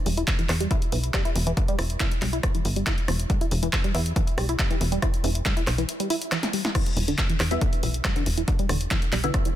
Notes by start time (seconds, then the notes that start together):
0.06 E1 G3, open hi-hat
0.17 E4, closed hi-hat
0.28 kick, clap, closed hi-hat
0.39 E3, closed hi-hat
0.49 E2, cross-stick, clap, open hi-hat
0.60 G3, closed hi-hat
0.71 E4, kick, closed hi-hat
0.82 closed hi-hat
0.92 B1 E3, open hi-hat
1.04 closed hi-hat
1.14 G3, kick, cross-stick, clap, closed hi-hat
1.25 E4, closed hi-hat
1.35 E1, open hi-hat
1.47 E3, closed hi-hat
1.57 kick, closed hi-hat
1.68 G3, closed hi-hat
1.78 E1 E4, cross-stick, open hi-hat
1.90 closed hi-hat
2.00 E3, kick, clap, closed hi-hat
2.11 closed hi-hat
2.22 B1 G3, clap, open hi-hat
2.33 E4, closed hi-hat
2.43 kick, cross-stick, closed hi-hat
2.55 E3, closed hi-hat
2.65 G1, open hi-hat
2.76 G3, closed hi-hat
2.87 E4, kick, clap, closed hi-hat
2.98 closed hi-hat
3.08 E1 E3, cross-stick, open hi-hat
3.19 closed hi-hat
3.30 G3, kick, closed hi-hat
3.41 E4, closed hi-hat
3.51 E1, open hi-hat
3.63 E3, closed hi-hat
3.73 kick, cross-stick, clap, closed hi-hat
3.84 G3, closed hi-hat
3.95 E2 E4, open hi-hat
4.06 closed hi-hat
4.16 E3, kick, closed hi-hat
4.27 closed hi-hat
4.38 B1 G3, cross-stick, open hi-hat
4.49 E4, closed hi-hat
4.59 kick, clap, closed hi-hat
4.71 E3, closed hi-hat
4.81 E1, open hi-hat
4.92 G3, closed hi-hat
5.02 E4, kick, cross-stick, closed hi-hat
5.14 closed hi-hat
5.24 E1 E3, open hi-hat
5.35 closed hi-hat
5.45 G3, kick, clap, closed hi-hat
5.57 E4, closed hi-hat
5.67 B1, cross-stick, clap, open hi-hat
5.78 E3, closed hi-hat
5.89 closed hi-hat
6.00 G3, closed hi-hat
6.10 E4, open hi-hat
6.22 closed hi-hat
6.32 E3, cross-stick, clap, closed hi-hat
6.43 snare, closed hi-hat
6.53 G3, open hi-hat
6.65 E4, snare, closed hi-hat
6.75 E3, kick, cross-stick, closed hi-hat, crash
6.86 closed hi-hat
6.97 E1 G3, open hi-hat
7.08 D3, closed hi-hat
7.18 kick, clap, closed hi-hat
7.30 E3, closed hi-hat
7.40 E2, cross-stick, clap, open hi-hat
7.51 G3 B3 E4 E5, closed hi-hat
7.61 D3, kick, closed hi-hat
7.73 closed hi-hat
7.83 B1 E3, open hi-hat
7.94 closed hi-hat
8.05 G3, kick, cross-stick, clap, closed hi-hat
8.16 D3, closed hi-hat
8.26 E1, open hi-hat
8.38 E3, closed hi-hat
8.48 kick, closed hi-hat
8.59 G3, closed hi-hat
8.69 E1 D3, cross-stick, open hi-hat
8.81 closed hi-hat
8.91 E3, kick, clap, closed hi-hat
9.02 closed hi-hat
9.12 B1 G3, clap, open hi-hat
9.24 D3 B3 E4 E5, closed hi-hat
9.34 kick, cross-stick, closed hi-hat
9.45 E3, closed hi-hat